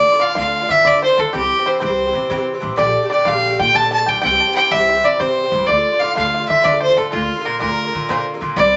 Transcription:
Already playing: D4 F4 D5
0.00 D3
0.12 D3 D4 F4
0.19 A2 D3 D4 F4 F5
0.35 D2 A2 D3 D4 F4 F5
0.45 D3 D4 F4
0.61 D3 D4 F4
0.68 A2 D3 D4 F4 E5
0.84 A2 D3 D4 F4 D5
0.93 D3 D4 F4
1.02 C5
1.09 D3 D4 F4
1.17 A2 D3 D4 F4 A4
1.32 C2 G2 E3 C4 G4
1.41 E3 C4 G4
1.58 E3 C4 G4
1.65 G2 E3 C4 G4 C5
1.80 C2 G2 E3 C4 G4 C5
1.84 C5
1.89 E3 C4 G4
2.06 E3 C4 G4
2.13 G2 C3 E3 C4 G4
2.30 G2 C3 E3 C4 G4
2.37 E3 C4 G4
2.54 E3 C4 G4
2.60 A1 G2 E3 C4 G4
2.76 A#1 A#2 D3 A3 G4 D5
2.86 D3 A3 G4
3.03 D3 A3 G4
3.10 A#2 D3 A3 D5
3.14 G4
3.25 A#1 A#2 D3 A3 G4 F5
3.34 D3 A3 G4
3.50 D3 A3 G4
3.58 A#2 D3 A3 G4 G5
3.73 A#2 D3 A3 G4 A5
3.82 D3 A3 G4
3.91 A5
3.99 D3 A3 G4
4.06 B1 A#2 D3 A3 G4 G5
4.21 C2 G2 E3 C4 G4 G5
4.31 E3 C4 G4
4.40 A5
4.47 E3 C4 G4
4.54 G2 E3 C4 G4 G5
4.70 C2 G2 E3 C4 G4 E5
4.78 E3 C4 G4
4.89 E5
4.95 E3 C4 G4
5.02 G2 C3 E3 C4 G4 D5
5.19 G2 C3 E3 C4 G4 C5
5.28 E3 C4 G4
5.44 E3 C4 G4
5.52 C2 G2 E3 C4 G4
5.67 D2 A2 D3 A3 F4 D5
5.76 D3 A3 F4
5.92 D3 A3 F4
6.00 A2 D3 A3 F4 F5
6.15 D2 A2 D3 A3 F4 F5
6.23 D3 A3 F4
6.34 F5
6.40 D3 A3 F4
6.46 A2 D3 A3 F4 E5
6.62 A2 D3 A3 F4 D5
6.72 D3 A3 F4
6.80 C5
6.89 D3 A3 F4
6.97 A2 D3 A3 F4 A4
7.12 D2 A#2 D3 A#3 F4
7.22 D3 A#3 F4
7.38 D3 A#3 F4
7.45 A#2 D3 A#3 F4 A#4
7.59 D2 A#2 D3 A#3 F4 A#4
7.69 D3 A#3 F4
7.85 D3 A#3 F4
7.93 A#2 D3 A#3 F4
8.09 A#2 D3 A#3 F4 C5
8.17 D3 A#3 F4
8.34 D3 A#3 F4
8.40 A#2 D3 A#3 F4
8.56 C2 G2 E3 C4 E4 D5
8.67 E3 C4

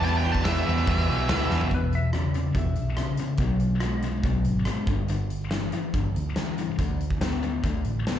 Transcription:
Already playing: E2
0.02 E2 B2 E3 G3 B3 E4 A5, open hi-hat
0.17 G5
0.24 E2 B2 E3 G3 B3 E4
0.32 A5, kick
0.44 E2 B2 E3 G3 B3 E5, snare, open hi-hat
0.48 E4
0.65 E2 B2 E3 G3 B3
0.69 E4
0.87 E2 B2 E3 G3 B3 E4, kick, open hi-hat
1.09 B1 E2 B2 E3 G3 B3 E4
1.29 D2 E2 B2 E3 G3 B3 E4, snare, open hi-hat
1.50 E2 B2 E3 G3 B3 E4, snare
1.61 floor tom
1.71 E2 B2 B4, kick, closed hi-hat
1.92 E5, closed hi-hat
2.13 E2 C#3 D5, cross-stick, closed hi-hat
2.34 E2 C#3, closed hi-hat
2.55 E2 B2 E5, kick, closed hi-hat
2.75 B1, closed hi-hat
2.97 E2 C#3, cross-stick, closed hi-hat
3.17 E2 C#3, closed hi-hat
3.37 B1 B2 F#3, kick, closed hi-hat
3.60 closed hi-hat
3.80 B2 G#3, cross-stick, closed hi-hat
4.02 B2 G#3, closed hi-hat
4.23 B1 B2 F#3, kick, closed hi-hat
4.44 G#1, closed hi-hat
4.65 B2 G#3, cross-stick, closed hi-hat
4.87 G1 G2 D3, kick, closed hi-hat
5.08 G2 D3, closed hi-hat
5.30 closed hi-hat
5.51 G2 E3, snare, closed hi-hat
5.72 G2 E3, closed hi-hat
5.93 G1 G2 D3, kick, closed hi-hat
6.16 D2, closed hi-hat
6.36 G2 E3, snare, closed hi-hat
6.58 G2 E3, closed hi-hat
6.79 D2 D3 A3, kick, closed hi-hat
7.00 closed hi-hat
7.10 kick
7.21 D3 B3, snare, closed hi-hat
7.43 D3 B3, closed hi-hat
7.64 D2 D3 A3, kick, closed hi-hat
7.84 A1, closed hi-hat
8.07 D3 B3, snare, closed hi-hat

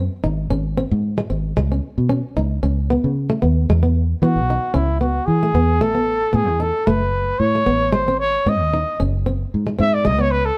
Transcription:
Already playing: C4
0.24 G#1 D#4
0.50 G#1 C#4
0.78 C4
0.91 G#2
1.18 G#3
1.30 G#1 C4
1.57 C#2 G#3
1.72 C#4
1.98 B2
2.09 C#4
2.36 C#2 D#4
2.63 C#2 C#4
2.90 B3
3.04 C#3
3.30 A3
3.42 D#2 B3
3.70 E2 G#3
3.83 B3
4.22 E3 B3 F#4
4.36 B1
4.50 D#4
4.74 C#2 C#4 E4
5.00 B3 F#4
5.26 E3 G#4
5.43 A3
5.54 E2 B3
5.81 A1 A3 A4
5.95 B3
6.33 A2 B3 G#4
6.48 E2
6.60 D#4 A4
6.87 F#1 A3 B4
7.39 A2 C#5
7.55 A3
7.66 A1 B3
7.92 G#1 G#3 C5
8.08 C4
8.19 C#5
8.46 G#2 C4 D#5
8.61 D#2
8.74 D#4
9.00 F#1 C#4
9.26 C4
9.54 G#2
9.67 G#3
9.79 G#2 C4 E5
9.94 D5
10.05 C#2 G#3 D#5
10.19 B3 C#5
10.31 B4
10.46 A4

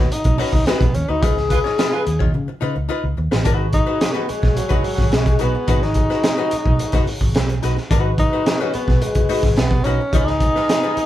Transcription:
Already playing: B3
0.11 D#4, muted hollow-body jazz guitar stroke, muted fingered electric bass stroke, closed hi-hat
0.24 B1, muted hollow-body jazz guitar stroke, kick, closed hi-hat
0.38 C#4 D#4 F#4 B4, open hi-hat
0.53 C#2 D#4, muted hollow-body jazz guitar stroke, kick, snare
0.66 B3 D#4 F#4 B4, snare, closed hi-hat
0.81 B1, kick, closed hi-hat
0.94 D#2 C#4, muted hollow-body jazz guitar stroke, closed hi-hat
1.08 D2 D#4 F#4 B4
1.23 C#2 D#4 F4 G#4 B4, kick, closed hi-hat
1.37 muted hollow-body jazz guitar stroke, snare
1.49 G#3 F4 B4, muted hollow-body jazz guitar stroke, kick, closed hi-hat
1.64 D#4 F4 C#5, snare
1.78 D#4 F4 B4, snare, closed hi-hat
1.93 G#3 F4 B4
2.06 D#2, muted hollow-body jazz guitar stroke, closed hi-hat
2.19 D#4 F4 C#5, kick
2.34 C#3, muted hollow-body jazz guitar stroke
2.48 muted hollow-body jazz guitar stroke
2.61 C#3 D#4 F4 B4
2.76 C#2, muted hollow-body jazz guitar stroke
2.89 D#4 F4 B4
3.04 C#2
3.17 D#2, muted hollow-body jazz guitar stroke
3.31 A1 D#4 F4 B4, snare
3.44 G#1 G#3 D#4 F#4 B4 C#5, kick, closed hi-hat
3.73 D#4, muted hollow-body jazz guitar stroke, kick, closed hi-hat
3.87 D#4 F#4 B4
4.01 muted hollow-body jazz guitar stroke, snare, closed hi-hat
4.12 A#3 B3 D#4 F#4 B4
4.28 G#3, muted hollow-body jazz guitar stroke, muted fingered electric bass stroke, closed hi-hat
4.42 B1, muted hollow-body jazz guitar stroke, kick, snare
4.56 F#3, muted hollow-body jazz guitar stroke, closed hi-hat
4.69 F#1 D#4 F#4 B4, kick, closed hi-hat
4.83 muted hollow-body jazz guitar stroke, open hi-hat
4.97 G#1, muted hollow-body jazz guitar stroke, kick, snare
5.12 B1 G#3, muted hollow-body jazz guitar stroke, snare, closed hi-hat
5.26 muted hollow-body jazz guitar stroke, kick, closed hi-hat
5.39 B1 B3 D#4 F#4 B4, closed hi-hat
5.54 muted hollow-body jazz guitar stroke
5.68 G#1 D#4 F#4 B4, kick, closed hi-hat
5.82 D#4, snare
5.94 muted hollow-body jazz guitar stroke, kick, closed hi-hat
6.10 D#4 F#4 B4, snare
6.23 muted hollow-body jazz guitar stroke, snare, closed hi-hat
6.38 D#4 F#4 B4
6.51 muted hollow-body jazz guitar stroke, muted fingered electric bass stroke, closed hi-hat
6.66 B1, muted hollow-body jazz guitar stroke, kick
6.79 muted hollow-body jazz guitar stroke, closed hi-hat
6.92 F#1 D#4 F#4 B4, kick, snare, closed hi-hat
7.06 muted hollow-body jazz guitar stroke, open hi-hat
7.21 G#1, muted hollow-body jazz guitar stroke, kick
7.35 B1, muted hollow-body jazz guitar stroke, snare, closed hi-hat
7.49 muted hollow-body jazz guitar stroke, closed hi-hat
7.63 B1 D#4 F#4 B4, snare, closed hi-hat
7.77 muted hollow-body jazz guitar stroke, snare
7.90 G#1 G#3 D#4 F#4 B4, kick, closed hi-hat
8.18 D#4, muted hollow-body jazz guitar stroke, kick, closed hi-hat
8.33 D#4 F#4 B4
8.46 muted hollow-body jazz guitar stroke, snare, closed hi-hat
8.60 C#4 D#4 F#4 B4
8.74 B3, muted hollow-body jazz guitar stroke, muted fingered electric bass stroke, closed hi-hat
8.88 B1, muted hollow-body jazz guitar stroke, kick, snare
9.01 G#3, muted hollow-body jazz guitar stroke, closed hi-hat
9.15 F#1, muted hollow-body jazz guitar stroke, kick, closed hi-hat
9.29 D#4 F#4 B4, open hi-hat
9.43 G#1, muted hollow-body jazz guitar stroke, kick, snare
9.56 B1 B3, muted hollow-body jazz guitar stroke, snare, closed hi-hat
9.71 muted hollow-body jazz guitar stroke, kick
9.84 B1 C#4 D#4 F#4 B4, closed hi-hat
10.00 muted hollow-body jazz guitar stroke
10.12 C#2 B3 D#4 F4 G#4 B4 D#5, kick, closed hi-hat
10.25 D#4, snare
10.40 muted hollow-body jazz guitar stroke, kick, closed hi-hat
10.56 D#4 F4 B4, snare
10.69 snare, closed hi-hat
10.83 D#4 F4 B4
10.97 muted hollow-body jazz guitar stroke, muted fingered electric bass stroke, closed hi-hat

